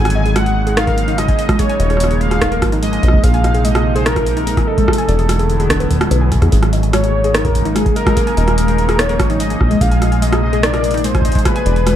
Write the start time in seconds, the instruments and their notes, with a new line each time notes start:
Already playing: acid bass G#1, ambient pad C#3 F#3 G#3 A#3 D#4, soft synth lead G#5
0.05 synth pluck G#5, cross-stick, closed hi-hat
0.10 closed hi-hat
0.15 synth pluck D#5, soft synth lead G#5
0.26 synth pluck G#4, closed hi-hat
0.36 synth pluck G#3, soft synth lead F#5, cross-stick, closed hi-hat
0.46 synth pluck G#4, closed hi-hat
0.67 synth pluck G#4, closed hi-hat
0.77 synth pluck D#4, soft synth lead F5, cross-stick, closed hi-hat
0.87 synth pluck A#4, kick, closed hi-hat
0.98 closed hi-hat
1.08 synth pluck D#4, closed hi-hat
1.18 synth pluck G#3, soft synth lead D#5, cross-stick, closed hi-hat
1.28 synth pluck G#5, kick, closed hi-hat
1.39 synth pluck D#5, closed hi-hat
1.49 synth pluck G#3, kick, cross-stick, closed hi-hat
1.59 ambient pad F3, synth pluck G#4, soft synth lead C#5, kick, closed hi-hat
1.69 synth pluck G#5, closed hi-hat
1.80 acid bass D#1, synth pluck D#5, closed hi-hat
1.90 synth pluck G#4, cross-stick, closed hi-hat
1.97 synth pluck G#3, cross-stick, closed hi-hat
2.04 cross-stick
2.11 synth pluck G#4, closed hi-hat
2.21 soft synth lead F5, closed hi-hat
2.31 synth pluck G#4, cross-stick, closed hi-hat
2.41 synth pluck D#4, kick, cross-stick, closed hi-hat
2.52 synth pluck A#4, closed hi-hat
2.62 acid bass G#1, kick, cross-stick, closed hi-hat
2.72 synth pluck D#4, closed hi-hat
2.82 synth pluck G#3, soft synth lead D#5, closed hi-hat
2.93 synth pluck G#5, closed hi-hat
3.03 acid bass A#1, ambient pad C3 D#4, synth pluck D#5, kick, closed hi-hat
3.08 cross-stick
3.13 synth pluck G#3, kick
3.23 acid bass A#1, synth pluck G#4, soft synth lead F5, kick, closed hi-hat
3.34 synth pluck G#5, closed hi-hat
3.44 synth pluck D#5, cross-stick, closed hi-hat
3.54 synth pluck G#4, closed hi-hat
3.64 synth pluck G#3, soft synth lead D#5, closed hi-hat
3.75 synth pluck G#4, cross-stick, closed hi-hat
3.95 synth pluck G#4, soft synth lead C5, closed hi-hat
4.06 synth pluck D#4, soft synth lead A#4, cross-stick, closed hi-hat
4.16 synth pluck A#4, kick, cross-stick, closed hi-hat
4.26 closed hi-hat
4.37 synth pluck D#4, closed hi-hat
4.47 synth pluck G#3, closed hi-hat
4.57 synth pluck G#5, kick, cross-stick, closed hi-hat
4.67 soft synth lead A4, synth pluck D#5
4.78 synth pluck G#3, kick, closed hi-hat
4.88 ambient pad D3 F#3 A3 B3 E4, synth pluck G#4, kick, cross-stick
4.93 closed hi-hat
4.98 synth pluck G#5, closed hi-hat
5.08 acid bass E1, synth pluck D5, closed hi-hat
5.19 synth pluck G#4, closed hi-hat
5.29 synth pluck G#3, cross-stick, closed hi-hat
5.39 synth pluck G#4, closed hi-hat
5.50 closed hi-hat
5.60 synth pluck G#4, closed hi-hat
5.70 synth pluck D4, kick, cross-stick, closed hi-hat
5.80 synth pluck B4, closed hi-hat
5.91 kick, closed hi-hat
5.93 kick
5.96 kick
5.98 kick
6.01 synth pluck G#3, kick, cross-stick, closed hi-hat
6.03 kick
6.09 acid bass B1, synth pluck B4, kick, closed hi-hat
6.21 synth pluck G#5
6.32 synth pluck G#5, kick, closed hi-hat
6.35 kick
6.38 acid bass E2, synth pluck G#4, kick
6.42 kick, cross-stick, closed hi-hat
6.45 kick
6.49 acid bass G#1, ambient pad C#3 G#3 A#3 D#4, synth texture G#3 G#5, synth pluck G#4, kick
6.52 kick, closed hi-hat
6.62 synth pluck G#5, cross-stick, closed hi-hat
6.73 synth pluck D#5, closed hi-hat
6.83 synth pluck G#5, closed hi-hat
6.93 synth pluck G#3, soft synth lead C#5, cross-stick, closed hi-hat
7.04 synth pluck G#4, closed hi-hat
7.24 synth pluck G#4, closed hi-hat
7.34 synth pluck D#4, soft synth lead A#4, cross-stick, closed hi-hat
7.45 synth pluck A#4, kick, closed hi-hat
7.48 kick
7.52 kick
7.55 kick, closed hi-hat
7.58 kick
7.62 synth pluck D#4, kick, closed hi-hat
7.76 synth pluck G#3, soft synth lead G#4, cross-stick, closed hi-hat
7.86 synth pluck G#5, kick, closed hi-hat
7.96 soft synth lead A#4, synth pluck D#5, closed hi-hat
8.06 synth pluck G#3, kick, cross-stick, closed hi-hat
8.17 ambient pad F3, synth pluck G#4, kick, closed hi-hat
8.27 synth pluck G#5, closed hi-hat
8.37 acid bass D#1, synth pluck D#5, closed hi-hat
8.48 synth pluck G#5, cross-stick, closed hi-hat
8.58 synth pluck G#3, closed hi-hat
8.68 synth pluck G#4, closed hi-hat
8.78 closed hi-hat
8.89 synth pluck G#4, cross-stick, closed hi-hat
8.99 synth pluck D#4, soft synth lead C#5, cross-stick, closed hi-hat
9.09 synth pluck A#4, closed hi-hat
9.19 acid bass G#1, kick, cross-stick, closed hi-hat
9.30 synth pluck D#4, closed hi-hat
9.40 synth pluck G#3, soft synth lead D#5, closed hi-hat
9.50 synth pluck G#5, closed hi-hat
9.60 acid bass A#1, ambient pad C3 G#3, synth pluck D#5, kick, cross-stick
9.71 synth pluck G#3, closed hi-hat
9.81 acid bass A#1, synth pluck G#4, soft synth lead F5, kick, closed hi-hat
9.91 synth pluck G#5, closed hi-hat
10.02 synth pluck D#5, cross-stick, closed hi-hat
10.12 synth pluck G#5, closed hi-hat
10.22 synth pluck G#3, soft synth lead D#5, closed hi-hat
10.32 synth pluck G#4, cross-stick, closed hi-hat
10.43 soft synth lead D#5
10.53 synth pluck G#4, closed hi-hat
10.63 synth pluck D#4, soft synth lead D5, cross-stick, closed hi-hat
10.74 synth pluck A#4, cross-stick, closed hi-hat
10.84 closed hi-hat
10.91 synth pluck D#4, closed hi-hat
10.94 closed hi-hat
10.98 closed hi-hat
11.04 synth pluck G#3, soft synth lead C5, closed hi-hat
11.15 synth pluck G#5, kick, cross-stick, closed hi-hat
11.21 synth pluck D#5, kick, closed hi-hat
11.28 kick, closed hi-hat
11.35 synth pluck G#3, kick, closed hi-hat
11.39 closed hi-hat
11.45 ambient pad D3 E3 F#3 B3 E4, synth pluck G#4, soft synth lead B4, kick, cross-stick, closed hi-hat
11.56 synth pluck G#5, closed hi-hat
11.66 acid bass E1, synth pluck D5, closed hi-hat
11.76 synth pluck G#5, closed hi-hat
11.87 synth pluck G#3, cross-stick, closed hi-hat